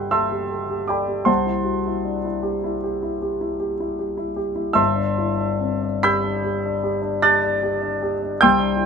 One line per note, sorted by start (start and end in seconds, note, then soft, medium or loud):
0.00 1.24 G1 soft
0.00 1.30 F#4 soft
0.00 0.31 G4 soft
0.00 0.11 A4 soft
0.00 0.90 D5 soft
0.00 1.26 F#5 medium
0.00 0.89 G5 soft
0.00 0.90 B5 medium
0.00 0.12 C6 soft
0.00 0.88 D6 medium
0.00 0.11 E6 soft
0.00 1.30 F#6 medium
0.00 0.11 G6 medium
0.11 0.42 A4 soft
0.11 0.84 E5 medium
0.11 0.85 A5 medium
0.11 0.85 C6 medium
0.11 0.88 E6 medium
0.31 0.62 G4 soft
0.51 0.81 A4 soft
0.70 1.01 G4 soft
0.88 1.20 A4 soft
0.88 1.26 D5 soft
0.88 1.25 G5 soft
0.88 1.26 B5 soft
0.88 1.27 D6 medium
1.08 1.27 G4 soft
1.25 4.74 C2 medium
1.25 4.35 C5 medium
1.25 4.35 F#5 soft
1.25 4.35 A5 medium
1.25 4.39 C6 medium
1.47 1.78 E4 soft
1.65 1.85 F#4 soft
1.86 2.17 E4 soft
2.05 2.25 D4 soft
2.24 2.57 E4 soft
2.43 2.76 G4 soft
2.64 2.97 E4 soft
2.84 3.17 G4 soft
3.03 3.36 E4 soft
3.22 3.55 G4 soft
3.41 3.74 E4 soft
3.60 3.93 G4 soft
3.80 4.12 E4 soft
3.99 4.31 G4 soft
4.17 4.50 E4 soft
4.36 4.69 G4 soft
4.55 4.77 E4 soft
4.73 8.34 G1 medium
4.73 6.01 E5 medium
4.73 6.00 A5 medium
4.73 6.01 C6 medium
4.73 6.02 E6 medium
4.96 5.31 D4 soft
5.18 5.40 E4 soft
5.38 5.75 D4 soft
5.60 5.84 C4 soft
5.82 6.17 D4 soft
6.03 6.38 G4 soft
6.03 7.20 B5 medium
6.03 7.20 E6 medium
6.03 7.20 G6 medium
6.03 7.24 B6 medium
6.24 6.58 D4 soft
6.44 6.77 G4 soft
6.65 6.97 D4 soft
6.83 7.16 G4 soft
7.02 7.35 D4 soft
7.22 7.55 G4 soft
7.22 8.35 A5 medium
7.22 8.35 D6 medium
7.22 8.35 F#6 medium
7.22 8.39 A6 medium
7.43 7.75 D4 soft
7.63 7.94 G4 soft
7.82 8.13 D4 soft
8.03 8.33 G4 soft
8.22 8.41 D4 soft
8.41 8.86 C2 medium
8.41 8.86 G5 medium
8.41 8.86 C6 medium
8.41 8.86 E6 medium
8.41 8.86 G6 loud
8.60 8.86 D4 soft
8.77 8.86 E4 soft